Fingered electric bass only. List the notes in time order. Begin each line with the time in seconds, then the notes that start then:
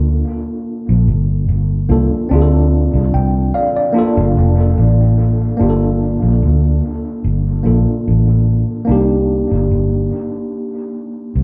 Already playing: D2
0.89 A#1
1.08 G1
1.49 G1
1.89 C2
2.31 D2
2.94 C2
3.14 C2
4.17 G1
4.37 F1
4.78 A1
5.60 G1
6.22 A#1
6.43 D2
7.24 G1
7.66 A#1
8.08 A1
8.89 C2
9.51 G1
9.71 G1
11.35 C2